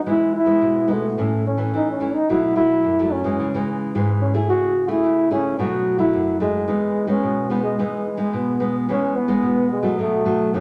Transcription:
0.06 E3 G#3 B3 E4
0.36 E4
0.46 G#3 B3 E4
0.61 B2
0.88 G#3 B3 E4
0.92 A3
1.18 A2 E3 A3 C#4
1.47 C#4
1.57 E3 A3 C#4
1.74 E3 D#4
1.91 C#4
2.00 E3 A3 C#4
2.15 D#4
2.29 B2 F#3 A3 E4
2.56 F#3 A3 E4
2.84 F#2
2.99 F#3 A3 E4
3.12 C#4
3.24 E3 G#3 D#4
3.40 C#3
3.54 E3 G#3 D#4
3.95 G#2 E3 G#3 D#4
4.21 C#4
4.34 A3 E4 G#4
4.49 C#3 F#4
4.88 A3 E4 G#4
5.04 C#3
5.30 A3 C#4 E4 G#4
5.59 B2 F#3 A3 D#4 F#4
5.98 F#3 A3 E4
6.13 F#2
6.40 F#3 G#3 A3 D#4
6.68 E3 G#3 B3 D#4
7.07 G#3 B3 C#4 D#4
7.23 B2
7.50 G#3 B3 D#4
7.63 G#3
7.79 E3 G#3 B3 D#4
8.17 G#3 B3 D#4
8.33 B2 B3
8.60 G#3 B3 D#4
8.89 E3 G#3 B3 C#4 D#4
9.16 B3
9.28 G#3 B3 D#4
9.42 B2
9.71 G#3
9.82 F#3 A3 D#4
9.99 B2 A3
10.25 F#3 A3 D#4
10.54 F#2 F#3 A3 C#4 D#4

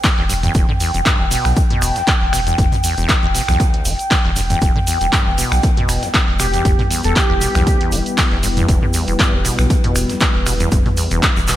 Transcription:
Already playing: G5
0.04 E3, finger snap, kick, snare, clap, closed hi-hat, open hi-hat, shaker
0.18 E1 E2, snare
0.29 G2, closed hi-hat, open hi-hat, shaker
0.43 E2, closed hi-hat, mid tom, shaker
0.54 E1 E2, kick, closed hi-hat, shaker
0.69 D3, mid tom
0.80 E2, closed hi-hat, open hi-hat, shaker
0.94 E1 E2, closed hi-hat, shaker
1.06 G2, kick, snare, clap, closed hi-hat, shaker
1.20 E1 D2
1.31 B2, closed hi-hat, open hi-hat, shaker
1.45 B1, finger snap, shaker
1.56 D2, kick, closed hi-hat, shaker
1.70 B2, closed hi-hat, mid tom
1.82 E1, finger snap, closed hi-hat, open hi-hat, shaker
1.96 E2, snare, closed hi-hat, shaker
2.07 kick, snare, clap, closed hi-hat, shaker
2.21 E1, snare
2.33 B2, finger snap, closed hi-hat, open hi-hat, shaker
2.47 E2, closed hi-hat, shaker
2.58 E1, kick, closed hi-hat, mid tom, shaker
2.72 B2, closed hi-hat, mid tom, shaker
2.84 E2, closed hi-hat, open hi-hat, shaker
2.98 E1 E2, closed hi-hat, shaker
3.09 E1, kick, snare, clap, closed hi-hat, shaker
3.23 E1 E2
3.35 B2, closed hi-hat, open hi-hat, shaker
3.48 B1 E2, finger snap, shaker
3.60 D2, kick, closed hi-hat, shaker
3.74 closed hi-hat
3.85 E1 E3, closed hi-hat, open hi-hat, shaker
3.99 closed hi-hat, shaker
4.11 E3, finger snap, kick, snare, clap, closed hi-hat, open hi-hat, shaker
4.25 E1 E2, snare
4.36 G2, closed hi-hat, open hi-hat, shaker
4.50 E2, closed hi-hat, mid tom, shaker
4.62 E1 G3 B3 E4 B4, kick, closed hi-hat, shaker
4.76 D3, mid tom
4.87 E2, closed hi-hat, open hi-hat, shaker
5.01 E1 E2, closed hi-hat, shaker
5.12 G2, kick, snare, clap, closed hi-hat, shaker
5.26 E1 D2
5.38 B2, closed hi-hat, open hi-hat, shaker
5.52 B1, finger snap, shaker
5.63 D2, kick, closed hi-hat, shaker
5.77 B2, closed hi-hat, mid tom
5.89 E1, finger snap, closed hi-hat, open hi-hat, shaker
6.03 E2, snare, closed hi-hat, shaker
6.14 kick, snare, clap, closed hi-hat, shaker
6.28 E1, snare
6.39 B2 G4, finger snap, closed hi-hat, open hi-hat, shaker
6.54 E2, closed hi-hat, shaker
6.65 E1, kick, closed hi-hat, mid tom, shaker
6.79 B2, closed hi-hat, mid tom
6.91 E2, closed hi-hat, open hi-hat, shaker
7.03 E1 E2 A4, closed hi-hat, shaker
7.16 E1 G4, kick, snare, clap, closed hi-hat, shaker
7.30 E1 E2
7.41 B2, closed hi-hat, open hi-hat, shaker
7.55 B1 E2, finger snap, shaker
7.67 D2, kick, closed hi-hat, shaker
7.81 E2, closed hi-hat
7.92 E1 E3, closed hi-hat, open hi-hat, shaker
8.06 closed hi-hat, shaker
8.18 E3, finger snap, kick, snare, clap, closed hi-hat, open hi-hat, shaker
8.31 E1 E2, snare
8.43 G2, closed hi-hat, open hi-hat, shaker
8.57 E2, closed hi-hat, mid tom, shaker
8.68 E1, kick, closed hi-hat, shaker
8.82 D3, mid tom
8.93 E2, closed hi-hat, open hi-hat, shaker
9.08 E1 E2, closed hi-hat, shaker
9.19 G2, kick, snare, clap, closed hi-hat, shaker
9.33 E1 D2
9.45 B2, closed hi-hat, open hi-hat, shaker
9.59 B1, finger snap, shaker
9.70 D2, kick, closed hi-hat, shaker
9.84 B2, closed hi-hat, mid tom
9.95 E1, finger snap, closed hi-hat, open hi-hat, shaker
10.09 E2, snare, closed hi-hat, shaker
10.21 kick, snare, clap, closed hi-hat, shaker
10.35 E1, snare
10.46 B2, finger snap, open hi-hat, shaker
10.60 E2, closed hi-hat, shaker
10.72 E1, kick, closed hi-hat, mid tom, shaker
10.86 B2, closed hi-hat, mid tom
10.97 E2, closed hi-hat, open hi-hat, shaker
11.11 E1 E2, closed hi-hat, shaker
11.23 E1, kick, snare, clap, closed hi-hat, shaker
11.37 E1 E2, shaker
11.48 B2, clap, closed hi-hat, open hi-hat, shaker

